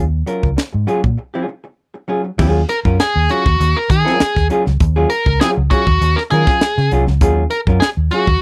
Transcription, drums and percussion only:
0, 0, Header, 1, 2, 480
1, 0, Start_track
1, 0, Key_signature, -6, "minor"
1, 0, Tempo, 603015
1, 1905, Time_signature, 4, 2, 24, 8
1, 6700, End_track
2, 0, Start_track
2, 0, Title_t, "Drums"
2, 218, Note_on_c, 9, 42, 73
2, 297, Note_off_c, 9, 42, 0
2, 344, Note_on_c, 9, 36, 80
2, 424, Note_off_c, 9, 36, 0
2, 462, Note_on_c, 9, 38, 87
2, 463, Note_on_c, 9, 42, 72
2, 542, Note_off_c, 9, 38, 0
2, 543, Note_off_c, 9, 42, 0
2, 702, Note_on_c, 9, 42, 64
2, 781, Note_off_c, 9, 42, 0
2, 828, Note_on_c, 9, 36, 76
2, 907, Note_off_c, 9, 36, 0
2, 1901, Note_on_c, 9, 49, 99
2, 1903, Note_on_c, 9, 36, 125
2, 1981, Note_off_c, 9, 49, 0
2, 1983, Note_off_c, 9, 36, 0
2, 2139, Note_on_c, 9, 42, 89
2, 2219, Note_off_c, 9, 42, 0
2, 2270, Note_on_c, 9, 36, 86
2, 2349, Note_off_c, 9, 36, 0
2, 2387, Note_on_c, 9, 38, 99
2, 2388, Note_on_c, 9, 42, 90
2, 2466, Note_off_c, 9, 38, 0
2, 2468, Note_off_c, 9, 42, 0
2, 2621, Note_on_c, 9, 42, 81
2, 2701, Note_off_c, 9, 42, 0
2, 2753, Note_on_c, 9, 36, 92
2, 2832, Note_off_c, 9, 36, 0
2, 2871, Note_on_c, 9, 42, 100
2, 2951, Note_off_c, 9, 42, 0
2, 3103, Note_on_c, 9, 36, 106
2, 3103, Note_on_c, 9, 42, 70
2, 3182, Note_off_c, 9, 42, 0
2, 3183, Note_off_c, 9, 36, 0
2, 3236, Note_on_c, 9, 38, 41
2, 3316, Note_off_c, 9, 38, 0
2, 3345, Note_on_c, 9, 42, 97
2, 3346, Note_on_c, 9, 38, 118
2, 3425, Note_off_c, 9, 38, 0
2, 3425, Note_off_c, 9, 42, 0
2, 3474, Note_on_c, 9, 36, 88
2, 3474, Note_on_c, 9, 38, 39
2, 3554, Note_off_c, 9, 36, 0
2, 3554, Note_off_c, 9, 38, 0
2, 3583, Note_on_c, 9, 42, 65
2, 3663, Note_off_c, 9, 42, 0
2, 3712, Note_on_c, 9, 38, 37
2, 3791, Note_off_c, 9, 38, 0
2, 3822, Note_on_c, 9, 42, 92
2, 3824, Note_on_c, 9, 36, 107
2, 3902, Note_off_c, 9, 42, 0
2, 3904, Note_off_c, 9, 36, 0
2, 4057, Note_on_c, 9, 42, 86
2, 4137, Note_off_c, 9, 42, 0
2, 4188, Note_on_c, 9, 36, 91
2, 4268, Note_off_c, 9, 36, 0
2, 4308, Note_on_c, 9, 38, 103
2, 4309, Note_on_c, 9, 42, 78
2, 4388, Note_off_c, 9, 38, 0
2, 4389, Note_off_c, 9, 42, 0
2, 4544, Note_on_c, 9, 42, 72
2, 4545, Note_on_c, 9, 36, 84
2, 4624, Note_off_c, 9, 42, 0
2, 4625, Note_off_c, 9, 36, 0
2, 4671, Note_on_c, 9, 36, 94
2, 4751, Note_off_c, 9, 36, 0
2, 4790, Note_on_c, 9, 42, 97
2, 4869, Note_off_c, 9, 42, 0
2, 4916, Note_on_c, 9, 38, 39
2, 4996, Note_off_c, 9, 38, 0
2, 5019, Note_on_c, 9, 42, 79
2, 5098, Note_off_c, 9, 42, 0
2, 5149, Note_on_c, 9, 38, 43
2, 5151, Note_on_c, 9, 36, 108
2, 5229, Note_off_c, 9, 38, 0
2, 5230, Note_off_c, 9, 36, 0
2, 5264, Note_on_c, 9, 38, 121
2, 5264, Note_on_c, 9, 42, 87
2, 5344, Note_off_c, 9, 38, 0
2, 5344, Note_off_c, 9, 42, 0
2, 5391, Note_on_c, 9, 38, 38
2, 5471, Note_off_c, 9, 38, 0
2, 5503, Note_on_c, 9, 42, 64
2, 5583, Note_off_c, 9, 42, 0
2, 5630, Note_on_c, 9, 38, 33
2, 5710, Note_off_c, 9, 38, 0
2, 5739, Note_on_c, 9, 42, 90
2, 5741, Note_on_c, 9, 36, 115
2, 5819, Note_off_c, 9, 42, 0
2, 5820, Note_off_c, 9, 36, 0
2, 5975, Note_on_c, 9, 42, 81
2, 6054, Note_off_c, 9, 42, 0
2, 6105, Note_on_c, 9, 36, 84
2, 6184, Note_off_c, 9, 36, 0
2, 6226, Note_on_c, 9, 38, 101
2, 6227, Note_on_c, 9, 42, 84
2, 6305, Note_off_c, 9, 38, 0
2, 6307, Note_off_c, 9, 42, 0
2, 6456, Note_on_c, 9, 42, 72
2, 6535, Note_off_c, 9, 42, 0
2, 6586, Note_on_c, 9, 36, 92
2, 6666, Note_off_c, 9, 36, 0
2, 6700, End_track
0, 0, End_of_file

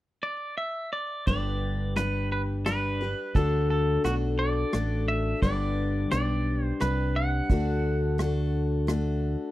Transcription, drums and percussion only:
0, 0, Header, 1, 2, 480
1, 0, Start_track
1, 0, Key_signature, 1, "major"
1, 0, Tempo, 691244
1, 889, Time_signature, 3, 2, 24, 8
1, 6607, End_track
2, 0, Start_track
2, 0, Title_t, "Drums"
2, 884, Note_on_c, 9, 36, 98
2, 953, Note_off_c, 9, 36, 0
2, 1363, Note_on_c, 9, 37, 67
2, 1433, Note_off_c, 9, 37, 0
2, 1848, Note_on_c, 9, 37, 76
2, 1917, Note_off_c, 9, 37, 0
2, 2326, Note_on_c, 9, 36, 98
2, 2395, Note_off_c, 9, 36, 0
2, 2809, Note_on_c, 9, 37, 58
2, 2878, Note_off_c, 9, 37, 0
2, 3286, Note_on_c, 9, 37, 69
2, 3355, Note_off_c, 9, 37, 0
2, 3766, Note_on_c, 9, 36, 105
2, 3836, Note_off_c, 9, 36, 0
2, 4247, Note_on_c, 9, 37, 75
2, 4316, Note_off_c, 9, 37, 0
2, 4727, Note_on_c, 9, 37, 64
2, 4796, Note_off_c, 9, 37, 0
2, 5206, Note_on_c, 9, 36, 101
2, 5275, Note_off_c, 9, 36, 0
2, 5689, Note_on_c, 9, 37, 71
2, 5758, Note_off_c, 9, 37, 0
2, 6168, Note_on_c, 9, 37, 65
2, 6238, Note_off_c, 9, 37, 0
2, 6607, End_track
0, 0, End_of_file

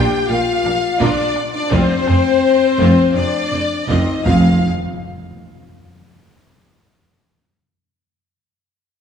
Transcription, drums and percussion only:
0, 0, Header, 1, 2, 480
1, 0, Start_track
1, 0, Tempo, 715137
1, 1149, Time_signature, 4, 2, 24, 8
1, 2117, Tempo, 738916
1, 5916, End_track
2, 0, Start_track
2, 0, Title_t, "Taiko and cinematic ensemble drums"
2, 434, Note_on_c, 9, 37, 52
2, 502, Note_off_c, 9, 37, 0
2, 672, Note_on_c, 9, 41, 92
2, 739, Note_off_c, 9, 41, 0
2, 913, Note_on_c, 9, 37, 50
2, 980, Note_off_c, 9, 37, 0
2, 1152, Note_on_c, 9, 41, 123
2, 1219, Note_off_c, 9, 41, 0
2, 1390, Note_on_c, 9, 37, 53
2, 1457, Note_off_c, 9, 37, 0
2, 1872, Note_on_c, 9, 41, 89
2, 1939, Note_off_c, 9, 41, 0
2, 2591, Note_on_c, 9, 41, 90
2, 2656, Note_off_c, 9, 41, 0
2, 2835, Note_on_c, 9, 41, 102
2, 2900, Note_off_c, 9, 41, 0
2, 5916, End_track
0, 0, End_of_file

